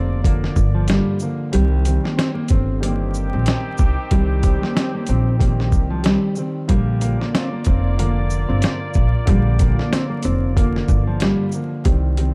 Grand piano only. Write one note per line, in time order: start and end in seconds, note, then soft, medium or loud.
0.00 0.17 D3 medium
0.00 0.18 F3 medium
0.00 0.18 A#3 loud
0.24 0.84 D3 medium
0.24 0.85 F3 medium
0.24 0.85 A#3 loud
0.87 1.18 D3 medium
0.87 1.18 F3 medium
0.87 1.19 A#3 medium
1.20 1.51 D3 medium
1.20 1.51 F3 medium
1.20 1.52 A#3 medium
1.52 1.83 D#3 loud
1.52 1.83 G3 medium
1.52 1.84 C4 loud
1.85 2.75 D#3 medium
1.85 2.76 G3 medium
1.85 2.77 C4 loud
2.80 3.71 D#3 medium
2.80 3.72 G3 medium
2.80 3.73 C4 loud
4.11 4.41 D#3 loud
4.11 4.42 G3 medium
4.11 4.42 C4 loud
4.42 5.33 D#3 medium
4.42 5.33 G3 medium
4.42 5.34 C4 loud
5.39 6.00 D#3 medium
5.39 6.00 G3 medium
5.39 6.01 C4 loud
6.03 6.34 D#3 medium
6.03 6.34 G3 medium
6.03 6.35 C4 medium
6.37 6.67 D#3 medium
6.37 6.67 G3 medium
6.37 6.68 C4 medium
6.68 6.98 D3 loud
6.68 6.99 F3 loud
6.68 7.00 A#3 loud
7.00 7.91 D3 medium
7.00 7.91 F3 medium
7.00 7.92 A#3 loud
7.97 8.88 D3 loud
7.97 8.89 F3 medium
7.97 8.89 A#3 loud
9.25 9.56 D3 loud
9.25 9.57 F3 medium
9.25 9.58 A#3 loud
9.59 10.49 D3 medium
9.59 10.50 F3 medium
9.59 10.50 A#3 loud
10.56 11.16 D3 medium
10.56 11.17 F3 medium
10.56 11.17 A#3 loud
11.19 11.50 D3 medium
11.19 11.51 F3 medium
11.19 11.51 A#3 medium
11.52 11.83 D3 medium
11.52 11.83 F3 medium
11.52 11.84 A#3 medium
11.84 12.15 D#3 medium
11.84 12.15 G3 medium
11.84 12.16 C4 loud
12.17 12.34 D#3 medium
12.17 12.34 G3 medium
12.17 12.34 C4 medium